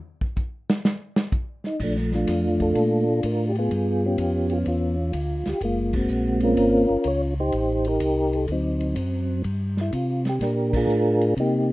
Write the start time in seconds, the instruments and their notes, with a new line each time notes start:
0.21 kick
0.36 kick, hi-hat pedal
0.70 snare
0.85 snare
1.16 snare
1.32 kick, hi-hat pedal
1.64 tonewheel organ D#4, snare
1.80 tonewheel organ A#1 F3 A3 D4, kick, crash
1.96 snare
2.12 tonewheel organ A3 D4 F4, snare
2.27 tonewheel organ F2, kick, snare, hi-hat pedal, ride
2.60 tonewheel organ D4 F4 A4, kick, ride
2.75 tonewheel organ A#2, kick, ride
3.23 tonewheel organ A2 A#4, kick, hi-hat pedal, ride
3.49 tonewheel organ G4
3.55 tonewheel organ B3 F4, ride
3.60 tonewheel organ G#4
3.71 tonewheel organ G2, kick, ride
4.06 tonewheel organ B3 C#4 G4
4.18 tonewheel organ F2, kick, hi-hat pedal, ride
4.50 tonewheel organ F4, ride
4.66 tonewheel organ E2 C#4 F4, kick, ride
5.13 tonewheel organ D2, kick, hi-hat pedal, ride
5.45 tonewheel organ D2 G4, snare, ride
5.61 tonewheel organ F#1 G#3 A#3 F4, kick, ride
5.93 tonewheel organ A#3 C4 F#4, kick, crash
6.08 tonewheel organ A#1, hi-hat pedal
6.40 tonewheel organ C#4 F4 A#4, ride
6.57 tonewheel organ G#1, kick, ride
6.89 tonewheel organ G#1
7.04 tonewheel organ C#2 C#5, kick, hi-hat pedal, ride
7.40 tonewheel organ D#4 G4 C5
7.52 tonewheel organ A1, kick, ride
7.85 tonewheel organ D#4 G4 A#4, ride
8.00 tonewheel organ C2, kick, hi-hat pedal, ride
8.33 tonewheel organ A4, ride
8.48 tonewheel organ D2, kick, ride
8.52 tonewheel organ F#3 C4 D#4
8.80 ride
8.96 tonewheel organ F#2, kick, hi-hat pedal, ride
9.44 tonewheel organ G2, kick, ride
9.77 snare
9.81 tonewheel organ E4
9.93 tonewheel organ C3 F4, kick, hi-hat pedal, ride
10.25 snare, ride
10.29 tonewheel organ G4
10.40 tonewheel organ A#2 D4 G4 A#4, kick, snare, ride
10.73 tonewheel organ D4 F4 G#4, kick, crash
10.87 tonewheel organ A2, hi-hat pedal
11.21 ride
11.37 tonewheel organ C3 A#3 D#4 G4, kick, ride